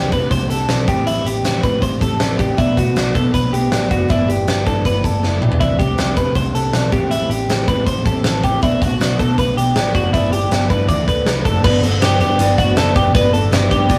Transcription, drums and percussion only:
0.12 kick, closed hi-hat
0.31 kick, closed hi-hat
0.50 closed hi-hat
0.69 snare, closed hi-hat
0.88 kick, closed hi-hat
1.07 closed hi-hat
1.26 closed hi-hat
1.45 snare, closed hi-hat
1.63 kick, closed hi-hat
1.82 kick, closed hi-hat
2.01 kick, closed hi-hat
2.20 snare, closed hi-hat
2.39 kick, closed hi-hat
2.58 kick, closed hi-hat
2.77 kick, closed hi-hat
2.96 snare, closed hi-hat
3.15 kick, closed hi-hat
3.34 kick, closed hi-hat
3.54 closed hi-hat
3.72 snare, closed hi-hat
3.91 kick, closed hi-hat
4.10 kick, closed hi-hat
4.30 closed hi-hat
4.48 snare, closed hi-hat
4.66 kick, closed hi-hat
4.85 kick, closed hi-hat
5.04 kick, closed hi-hat
5.23 snare
5.42 mid tom
5.52 floor tom
5.61 kick, closed hi-hat
5.79 kick, closed hi-hat
5.98 snare, closed hi-hat
6.17 kick, closed hi-hat
6.35 kick, closed hi-hat
6.55 closed hi-hat
6.73 snare, closed hi-hat
6.92 kick, closed hi-hat
7.11 closed hi-hat
7.31 closed hi-hat
7.50 snare, closed hi-hat
7.68 kick, closed hi-hat
7.87 kick, closed hi-hat
8.06 kick, closed hi-hat
8.24 snare, closed hi-hat
8.44 kick, closed hi-hat
8.63 kick, closed hi-hat
8.82 kick, closed hi-hat
9.01 snare, closed hi-hat
9.19 kick, closed hi-hat
9.38 kick, closed hi-hat
9.58 closed hi-hat
9.76 snare, closed hi-hat
9.95 kick, closed hi-hat
10.14 kick, closed hi-hat
10.33 closed hi-hat
10.51 snare, closed hi-hat
10.70 kick, closed hi-hat
10.89 kick, closed hi-hat
11.08 kick, closed hi-hat
11.27 snare, closed hi-hat
11.45 kick, closed hi-hat
11.64 kick, crash
11.83 closed hi-hat
12.02 snare, closed hi-hat
12.21 closed hi-hat
12.39 closed hi-hat
12.58 kick, closed hi-hat
12.77 snare, closed hi-hat
12.96 kick, closed hi-hat
13.15 kick, closed hi-hat
13.34 closed hi-hat
13.53 snare, closed hi-hat
13.71 kick, closed hi-hat
13.90 kick, closed hi-hat

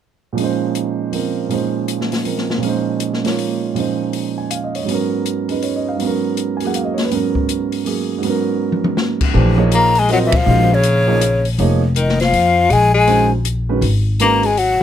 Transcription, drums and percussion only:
0.38 open hi-hat
0.75 closed hi-hat
1.13 open hi-hat
1.51 open hi-hat
1.88 closed hi-hat
2.01 snare
2.12 snare, open hi-hat
2.25 open hi-hat
2.38 snare
2.50 snare
2.63 open hi-hat
3.00 closed hi-hat
3.14 snare
3.25 snare, open hi-hat
3.38 open hi-hat
3.76 open hi-hat
4.13 open hi-hat
4.51 closed hi-hat
4.75 open hi-hat
4.89 open hi-hat
5.26 closed hi-hat
5.49 open hi-hat
5.62 open hi-hat
6.00 open hi-hat
6.37 closed hi-hat
6.60 open hi-hat
6.74 closed hi-hat
6.98 snare, open hi-hat
7.11 open hi-hat
7.35 kick
7.49 closed hi-hat
7.72 open hi-hat
7.86 open hi-hat
8.23 open hi-hat
8.72 mid tom
8.84 mid tom
8.97 snare
9.21 kick, crash
9.72 closed hi-hat
9.95 open hi-hat
10.09 open hi-hat
10.32 kick, ride
10.83 closed hi-hat
11.21 closed hi-hat
11.45 open hi-hat
11.59 open hi-hat
11.96 closed hi-hat
12.09 snare
12.20 snare, open hi-hat
12.33 open hi-hat
12.70 open hi-hat
13.07 open hi-hat
13.45 closed hi-hat
13.82 open hi-hat
14.20 closed hi-hat
14.43 open hi-hat
14.57 open hi-hat

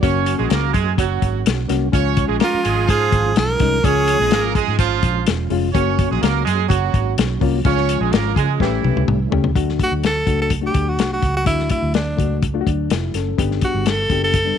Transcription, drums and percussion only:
0.03 kick, closed hi-hat
0.26 closed hi-hat
0.50 snare, closed hi-hat
0.74 kick, closed hi-hat
0.98 kick, closed hi-hat
1.22 kick, closed hi-hat
1.46 snare, closed hi-hat
1.69 snare, closed hi-hat
1.93 kick, closed hi-hat
2.17 kick, closed hi-hat
2.40 snare, closed hi-hat
2.65 closed hi-hat
2.89 kick, closed hi-hat
3.12 kick, closed hi-hat
3.36 snare, closed hi-hat
3.60 kick, snare, closed hi-hat
3.84 kick, closed hi-hat
4.08 closed hi-hat
4.31 snare, closed hi-hat
4.55 kick, closed hi-hat
4.79 kick, closed hi-hat
5.03 kick, closed hi-hat
5.27 snare, closed hi-hat
5.50 open hi-hat
5.75 kick, closed hi-hat
5.99 kick, closed hi-hat
6.23 snare, closed hi-hat
6.47 closed hi-hat
6.70 kick, closed hi-hat
6.94 kick, closed hi-hat
7.18 snare, closed hi-hat
7.41 kick, open hi-hat
7.65 kick, closed hi-hat
7.77 snare
7.89 closed hi-hat
8.13 snare, closed hi-hat
8.36 kick, closed hi-hat
8.60 kick, snare
8.84 high tom
8.97 high tom
9.08 mid tom
9.32 floor tom
9.44 floor tom
9.56 kick, closed hi-hat
9.69 snare
9.79 kick, closed hi-hat
10.04 snare, closed hi-hat
10.27 kick, closed hi-hat
10.50 kick, closed hi-hat
10.74 kick, closed hi-hat
10.99 snare, closed hi-hat
11.22 kick, closed hi-hat
11.46 kick, closed hi-hat
11.59 snare
11.69 kick, closed hi-hat
11.94 snare, closed hi-hat
12.19 kick, closed hi-hat
12.43 kick, closed hi-hat
12.67 kick, closed hi-hat
12.90 snare, closed hi-hat
13.14 snare, closed hi-hat
13.38 kick, closed hi-hat
13.51 snare
13.61 kick, closed hi-hat
13.86 snare, closed hi-hat
14.10 kick, closed hi-hat
14.34 kick, closed hi-hat

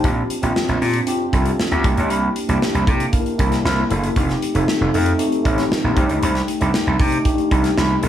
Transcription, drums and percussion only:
0.04 kick, closed hi-hat
0.30 closed hi-hat
0.43 closed hi-hat
0.56 snare
0.69 closed hi-hat
0.82 open hi-hat
0.94 closed hi-hat
1.07 closed hi-hat
1.33 kick, closed hi-hat
1.45 closed hi-hat
1.60 snare
1.71 closed hi-hat
1.84 kick, closed hi-hat
1.97 closed hi-hat
2.10 closed hi-hat
2.36 closed hi-hat
2.49 closed hi-hat
2.62 snare
2.75 closed hi-hat
2.87 kick, closed hi-hat
3.00 closed hi-hat
3.13 kick, closed hi-hat
3.26 closed hi-hat
3.39 kick, closed hi-hat
3.52 snare, closed hi-hat
3.66 snare
3.90 closed hi-hat
4.04 closed hi-hat
4.16 kick, closed hi-hat
4.29 snare, closed hi-hat
4.42 closed hi-hat
4.55 closed hi-hat
4.68 snare
4.94 open hi-hat
5.06 closed hi-hat
5.19 closed hi-hat
5.32 closed hi-hat
5.45 kick, closed hi-hat
5.58 snare, closed hi-hat
5.72 snare
5.97 kick, closed hi-hat
6.09 closed hi-hat
6.23 closed hi-hat
6.35 snare, closed hi-hat
6.48 closed hi-hat
6.61 closed hi-hat
6.74 snare
7.00 kick, open hi-hat
7.12 closed hi-hat
7.25 kick, closed hi-hat
7.38 closed hi-hat
7.51 kick, closed hi-hat
7.64 snare, closed hi-hat
7.78 snare
8.03 closed hi-hat

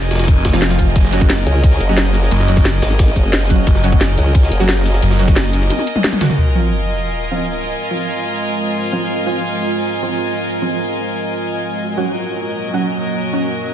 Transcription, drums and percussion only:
0.11 snare, closed hi-hat, ride, shaker
0.15 snare, ride
0.19 snare, ride
0.24 snare, ride
0.28 kick, closed hi-hat, ride
0.36 shaker
0.45 kick, snare, closed hi-hat, ride, shaker
0.53 snare, ride
0.62 snare, closed hi-hat, ride
0.70 snare, ride
0.79 kick, closed hi-hat, ride, shaker
0.87 shaker
0.96 kick, closed hi-hat, ride
1.04 snare
1.13 closed hi-hat, ride, shaker
1.21 kick, ride
1.30 snare, closed hi-hat, ride
1.38 ride
1.47 closed hi-hat, ride, shaker
1.64 kick, closed hi-hat, ride
1.72 snare
1.80 closed hi-hat, ride, shaker
1.89 ride
1.97 snare, closed hi-hat, ride
2.14 snare, closed hi-hat, ride, shaker
2.23 snare
2.31 closed hi-hat, ride
2.40 snare
2.48 closed hi-hat, ride, shaker
2.57 kick, snare
2.65 snare, closed hi-hat, ride
2.82 snare, closed hi-hat, ride, shaker
2.91 snare
2.99 kick, snare, closed hi-hat, ride
3.16 kick, closed hi-hat, ride, shaker
3.33 snare, closed hi-hat, ride
3.42 snare
3.50 kick, closed hi-hat, ride, shaker
3.67 kick, closed hi-hat, ride
3.75 snare
3.84 closed hi-hat, ride, shaker
3.92 kick, ride
4.01 snare, closed hi-hat, ride
4.09 ride
4.18 closed hi-hat, ride, shaker
4.35 kick, closed hi-hat, ride
4.43 snare
4.52 closed hi-hat, ride, shaker
4.60 ride
4.69 snare, closed hi-hat, ride
4.86 snare, closed hi-hat, ride, shaker
4.94 snare
5.02 closed hi-hat, ride
5.11 snare
5.19 closed hi-hat, ride, shaker
5.28 kick, snare, shaker
5.36 snare, closed hi-hat, ride
5.53 closed hi-hat, ride, shaker
5.62 snare
5.70 closed hi-hat, high tom, ride
5.79 high tom, shaker
5.87 closed hi-hat, ride, shaker
5.96 mid tom
6.04 snare, closed hi-hat, mid tom, ride
6.13 mid tom, ride
6.21 snare, closed hi-hat, mid tom, ride, shaker
6.30 snare, mid tom, shaker

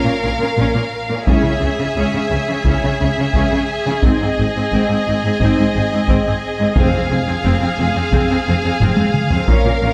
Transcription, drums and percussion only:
1.27 taiko
2.65 taiko
3.33 taiko
4.03 taiko
5.40 taiko
6.08 taiko
6.76 taiko
8.12 taiko
8.80 taiko low-mid
8.97 taiko high
9.14 taiko mid
9.30 taiko low
9.48 taiko

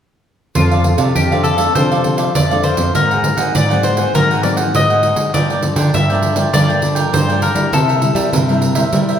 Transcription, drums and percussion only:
0.55 pandeiro
0.71 pandeiro
0.84 pandeiro
0.98 pandeiro
1.16 pandeiro
1.32 pandeiro
1.44 pandeiro
1.58 pandeiro
1.75 pandeiro
1.92 pandeiro
2.04 pandeiro
2.18 pandeiro
2.35 pandeiro
2.51 pandeiro
2.63 pandeiro
2.77 pandeiro
2.95 pandeiro
3.11 pandeiro
3.24 pandeiro
3.38 pandeiro
3.55 pandeiro
3.71 pandeiro
3.83 pandeiro
3.97 pandeiro
4.15 pandeiro
4.31 pandeiro
4.43 pandeiro
4.57 pandeiro
4.75 pandeiro
4.90 pandeiro
5.03 pandeiro
5.16 pandeiro
5.34 pandeiro
5.50 pandeiro
5.62 pandeiro
5.76 pandeiro
5.94 pandeiro
6.10 pandeiro
6.22 pandeiro
6.36 pandeiro
6.54 pandeiro
6.70 pandeiro
6.82 pandeiro
6.96 pandeiro
7.14 pandeiro
7.30 pandeiro
7.42 pandeiro
7.56 pandeiro
7.73 pandeiro
7.89 pandeiro
8.02 pandeiro
8.16 pandeiro
8.33 pandeiro
8.49 pandeiro
8.62 pandeiro
8.75 pandeiro
8.93 pandeiro
9.09 pandeiro

